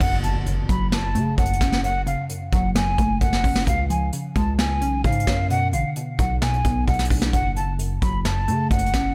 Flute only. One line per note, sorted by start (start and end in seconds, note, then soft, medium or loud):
0.01 0.19 F#5 loud
0.24 0.42 A5 medium
0.69 0.87 B5 medium
0.92 1.35 A5 medium
1.38 1.81 F#5 medium
1.84 2.02 F#5 loud
2.07 2.25 F5 medium
2.52 2.70 F#5 medium
2.75 3.18 G#5 medium
3.21 3.64 F#5 loud
3.67 3.85 F5 loud
3.90 4.08 G#5 medium
4.36 4.54 A5 medium
4.59 5.02 G#5 medium
5.04 5.47 F5 medium
5.50 5.68 F#5 loud
5.73 5.91 F5 medium
6.19 6.37 F#5 medium
6.42 6.85 G#5 medium
6.87 7.05 F#5 medium
7.33 7.51 F#5 loud
7.56 7.74 A5 medium
8.02 8.20 B5 medium
8.25 8.68 A5 medium
8.71 9.14 F#5 medium